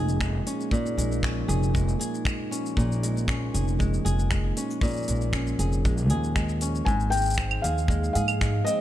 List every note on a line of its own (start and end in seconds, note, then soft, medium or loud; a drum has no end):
0.00 0.39 F1 medium
0.00 0.71 A#2 medium
0.00 6.85 F3 medium
0.00 0.20 G#3 medium
0.00 6.87 A#3 medium
0.00 0.45 C#4 medium
0.00 6.87 D#4 medium
0.00 1.48 G#4 medium
0.00 6.87 G#4 medium
0.09 shaker soft
0.21 0.97 G#3 medium
0.21 finger snap medium
0.21 kick medium
0.21 shaker soft
0.46 1.22 C#4 medium
0.46 open hi-hat medium
0.46 shaker medium
0.61 shaker soft
0.71 2.76 A#2 medium
0.71 kick medium
0.71 shaker soft
0.86 shaker soft
0.97 1.41 A#1 medium
0.97 1.73 G#3 medium
0.97 open hi-hat medium
0.97 shaker medium
1.12 shaker soft
1.23 2.50 C#4 medium
1.23 finger snap loud
1.23 kick loud
1.23 shaker soft
1.48 1.93 F1 medium
1.48 1.99 G#4 medium
1.48 open hi-hat medium
1.48 shaker medium
1.63 shaker soft
1.74 2.25 G#3 medium
1.74 kick medium
1.74 shaker soft
1.89 shaker soft
1.99 3.54 G#4 medium
1.99 open hi-hat medium
1.99 shaker medium
2.15 shaker soft
2.25 3.03 G#3 medium
2.25 finger snap medium
2.25 kick loud
2.25 shaker soft
2.51 3.27 C#4 medium
2.51 open hi-hat medium
2.51 shaker medium
2.66 shaker soft
2.77 3.46 A#1 medium
2.77 4.81 A#2 medium
2.77 kick medium
2.77 shaker soft
2.92 shaker soft
3.03 3.79 G#3 medium
3.03 open hi-hat medium
3.03 shaker medium
3.17 shaker soft
3.28 4.56 C#4 medium
3.28 finger snap loud
3.28 kick loud
3.28 shaker soft
3.54 3.98 F1 medium
3.54 4.04 G#4 medium
3.54 open hi-hat medium
3.54 shaker medium
3.68 shaker soft
3.79 4.30 G#3 medium
3.79 kick medium
3.79 shaker soft
3.94 shaker soft
4.05 4.49 F1 medium
4.05 5.59 G#4 medium
4.05 open hi-hat medium
4.05 shaker medium
4.19 shaker soft
4.31 5.07 G#3 medium
4.31 finger snap medium
4.31 kick loud
4.31 shaker soft
4.57 5.33 C#4 medium
4.57 open hi-hat medium
4.57 shaker medium
4.71 shaker soft
4.81 6.87 A#2 medium
4.81 kick loud
4.81 shaker soft
4.87 shaker soft
4.90 shaker soft
4.93 shaker soft
4.97 shaker soft
5.00 shaker soft
5.03 shaker soft
5.06 5.52 A#1 medium
5.06 5.85 G#3 medium
5.06 open hi-hat medium
5.06 shaker soft
5.09 shaker medium
5.15 shaker soft
5.21 shaker soft
5.33 6.60 C#4 medium
5.33 finger snap loud
5.33 kick medium
5.33 shaker soft
5.47 shaker soft
5.59 5.84 F1 medium
5.59 6.10 G#4 medium
5.59 open hi-hat medium
5.59 shaker medium
5.73 shaker soft
5.85 6.10 A#1 medium
5.85 6.35 G#3 medium
5.85 kick medium
5.85 shaker soft
5.98 shaker soft
6.10 6.80 D#2 loud
6.10 7.63 G#4 medium
6.10 open hi-hat medium
6.24 shaker soft
6.36 7.12 G#3 medium
6.36 finger snap medium
6.36 kick medium
6.36 shaker soft
6.49 shaker soft
6.61 6.92 C#4 medium
6.61 open hi-hat medium
6.61 shaker medium
6.75 shaker soft
6.85 7.57 G#1 medium
6.85 8.81 G#2 medium
6.85 8.81 F3 medium
6.85 7.13 G#5 medium
6.85 kick medium
6.85 shaker soft
7.00 shaker soft
7.06 8.81 A#3 medium
7.10 7.89 G#3 medium
7.10 7.64 G5 loud
7.10 open hi-hat medium
7.10 shaker soft
7.14 8.81 G#4 medium
7.14 shaker soft
7.19 8.81 D#4 medium
7.19 shaker soft
7.25 shaker soft
7.30 shaker medium
7.34 finger snap loud
7.34 kick loud
7.34 shaker medium
7.39 8.66 C4 medium
7.51 claves medium
7.62 8.08 D#2 medium
7.62 8.15 G#4 medium
7.62 8.12 F5 medium
7.62 open hi-hat medium
7.62 shaker medium
7.78 shaker soft
7.88 8.41 G#3 medium
7.88 kick loud
7.88 shaker soft
8.04 shaker soft
8.13 8.59 G#2 medium
8.13 8.81 G#4 medium
8.13 8.62 F5 medium
8.13 open hi-hat medium
8.13 shaker medium
8.28 claves medium
8.28 shaker soft
8.41 8.81 G#3 medium
8.41 finger snap medium
8.41 kick loud
8.41 shaker soft
8.64 8.81 C4 medium
8.64 8.81 D#5 loud
8.64 open hi-hat medium
8.64 shaker medium